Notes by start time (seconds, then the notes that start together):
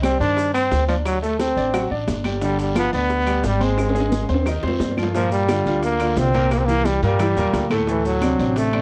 Already playing: C2
0.03 G3 C4 G4, high bongo, high conga, high timbale, short guiro, claves, maracas
0.20 G2 D#3 D4 C5, high conga, short guiro, maracas
0.37 high bongo, high conga, high timbale, maracas
0.54 C4 C5, high conga, high timbale, claves, maracas
0.71 D2, high bongo, low bongo, high conga, low timbale, short guiro, maracas
0.88 F3 D4 D5, high conga, high timbale, short guiro, maracas
1.05 F#3, high bongo, high conga, high timbale, long guiro, claves, maracas
1.22 A3 A4, high bongo, high conga, maracas
1.39 C4, high bongo, high conga, high timbale, short guiro, maracas
1.57 A1 D4 D5, high bongo, high conga, short guiro, maracas
1.74 F#3 F#4, high bongo, high conga, high timbale, claves, maracas
1.90 A1 D4 D5, high bongo, high conga
2.08 G1, high bongo, low bongo, high conga, high timbale, short guiro, maracas
2.24 G3 G4, high conga, high timbale, short guiro, claves, maracas
2.42 D3 G3 D4, high bongo, high conga, long guiro, maracas
2.59 G3, high conga, high timbale, maracas
2.75 F3 B3 F4, high bongo, high conga, high timbale, short guiro, claves, maracas
2.92 D2 B3 D4 D5, high conga, short guiro, maracas
3.10 high bongo, high conga, high timbale, maracas
3.27 G3 G4, high conga, high timbale, claves, maracas
3.44 G#1 G3, high bongo, low bongo, high conga, short guiro, maracas
3.60 G#3 C4 C5, high conga, high timbale, short guiro, maracas
3.78 high bongo, high timbale, claves, maracas
3.89 high timbale
3.95 G#3 G#4, high bongo, high conga, maracas
4.00 high timbale
4.12 high bongo, high conga, high timbale, short guiro, maracas
4.23 high timbale
4.29 D#2 C4 C5, high bongo, high conga, short guiro, maracas
4.34 high timbale
4.46 D#3 D#4, high bongo, high conga, low timbale, long guiro, claves, maracas
4.63 F2 C4 C5, high bongo, high conga
4.68 low timbale
4.80 G2, high bongo, high conga, low timbale, short guiro, maracas
4.91 low timbale
4.97 F3 F4, low bongo, high conga, short guiro, claves, maracas
5.03 low timbale
5.14 A#2 F3 A#3 A#4, high bongo, maracas
5.31 G3, high conga, maracas
5.48 D3 D4 F4, high bongo, high conga, high timbale, low timbale, short guiro, claves, maracas
5.66 D2 D3 D4 F4, short guiro, maracas
5.82 A#3, high bongo, high conga, high timbale, long guiro, maracas
6.00 D3 D4 F4, high conga, high timbale, claves, maracas
6.17 C2 C4, high bongo, low bongo, high conga, low timbale, short guiro, maracas
6.34 A#2 A#3 A#4, high conga, high timbale, short guiro, maracas
6.51 A#3, high bongo, high conga, high timbale, long guiro, claves, maracas
6.58 C4
6.65 E3 A#3 E4 G4, high bongo, high conga, maracas
6.85 G3, high bongo, high conga, high timbale, low timbale, short guiro, maracas
7.02 G2 A#2 G3 A#3 A#4, high bongo, high conga, short guiro, maracas
7.19 E3 E4 G4, high bongo, high conga, low conga, high timbale, long guiro, claves, maracas
7.36 E2 A#2 A#3 A#4, high conga, low conga, maracas
7.53 D2, high bongo, low bongo, high conga, high timbale, low timbale, short guiro, maracas
7.70 A2 A3 A4, high bongo, high conga, high timbale, short guiro, claves, maracas
7.87 A2 E3 A3 A4, high bongo, high conga, maracas
8.05 F#3, high conga, maracas
8.22 C3 C4 D4, high bongo, high conga, high timbale, low timbale, short guiro, claves, maracas
8.38 A1 C3 C4 D4, short guiro, maracas
8.56 A3, high bongo, high conga, high timbale, long guiro, maracas
8.73 C3 C4 D4, high conga, high timbale, claves